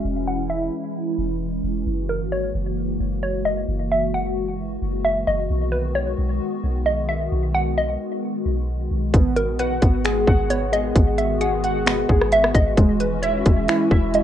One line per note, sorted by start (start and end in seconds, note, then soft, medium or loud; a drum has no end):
0.00 5.46 E3 medium
0.00 5.46 G#3 medium
0.00 1.83 C#4 medium
0.05 0.70 E1 loud
0.05 1.85 E4 medium
0.28 0.49 F#5 medium
0.50 1.82 E5 medium
1.18 1.62 E1 loud
1.64 1.86 E1 loud
1.86 2.22 F#1 loud
1.86 5.46 A#3 medium
1.86 9.10 F#4 medium
2.09 2.31 A#4 medium
2.21 2.53 G#1 medium
2.32 3.19 C#5 medium
2.55 2.98 F#1 loud
3.00 3.66 F#1 loud
3.23 3.44 C#5 medium
3.45 3.67 D#5 medium
3.68 4.78 F#1 loud
3.92 4.13 E5 medium
4.14 5.01 F#5 medium
4.82 5.26 F#1 loud
5.05 5.26 E5 medium
5.27 5.49 F#1 loud
5.27 5.49 D#5 medium
5.50 6.16 B1 loud
5.50 9.10 D#3 medium
5.50 9.10 G#3 medium
5.50 9.10 B3 medium
5.72 5.94 B4 medium
5.95 6.82 C#5 medium
6.18 6.40 B1 loud
6.64 7.29 B1 loud
6.86 7.08 D#5 medium
7.09 7.31 E5 medium
7.32 7.97 B1 loud
7.55 7.76 F#5 medium
7.78 9.10 D#5 medium
8.46 8.89 B1 loud
8.91 9.13 B1 medium
9.14 9.49 G#1 loud
9.14 12.74 D#3 medium
9.14 14.23 G#3 medium
9.14 12.74 B3 medium
9.14 9.81 B3 loud
9.14 14.23 F#4 loud
9.14 kick loud
9.14 closed hi-hat medium
9.36 9.58 A#4 medium
9.36 closed hi-hat medium
9.48 9.80 A#1 medium
9.59 10.46 B4 medium
9.59 10.26 F#5 medium
9.59 closed hi-hat medium
9.82 10.26 G#1 loud
9.82 10.49 B3 medium
9.82 kick loud
9.82 closed hi-hat medium
10.05 10.71 G#4 medium
10.05 finger snap loud
10.05 closed hi-hat medium
10.27 10.93 G#1 loud
10.27 11.63 F#5 loud
10.27 kick medium
10.50 11.85 B3 medium
10.50 10.72 C#5 medium
10.50 closed hi-hat medium
10.72 11.40 G#4 medium
10.72 10.94 D#5 medium
10.72 closed hi-hat medium
10.96 12.05 G#1 loud
10.96 kick loud
10.96 closed hi-hat medium
11.18 11.40 E5 medium
11.18 closed hi-hat medium
11.41 12.08 G#4 medium
11.41 12.28 F#5 medium
11.41 closed hi-hat medium
11.64 12.78 F#5 loud
11.64 closed hi-hat medium
11.86 12.77 B3 loud
11.86 finger snap loud
11.86 closed hi-hat medium
12.09 12.53 G#1 loud
12.09 12.77 G#4 medium
12.09 kick medium
12.21 cross-stick medium
12.32 12.54 E5 loud
12.32 closed hi-hat medium
12.44 cross-stick loud
12.55 12.76 G#1 loud
12.55 12.76 D#5 medium
12.55 kick medium
12.55 closed hi-hat medium
12.77 13.43 E1 loud
12.77 14.23 E3 medium
12.77 13.45 G#3 loud
12.77 14.23 C#4 medium
12.77 kick loud
12.77 closed hi-hat medium
13.00 13.22 B4 medium
13.00 closed hi-hat medium
13.22 14.10 C#5 medium
13.22 13.90 E5 loud
13.22 closed hi-hat medium
13.46 13.68 E1 loud
13.46 14.13 G#3 medium
13.46 kick loud
13.46 closed hi-hat medium
13.68 14.23 E4 loud
13.68 finger snap loud
13.68 closed hi-hat medium
13.91 14.23 E1 loud
13.91 14.23 E5 loud
13.91 kick medium
14.14 14.23 G#3 medium
14.14 14.23 D#5 medium
14.14 closed hi-hat medium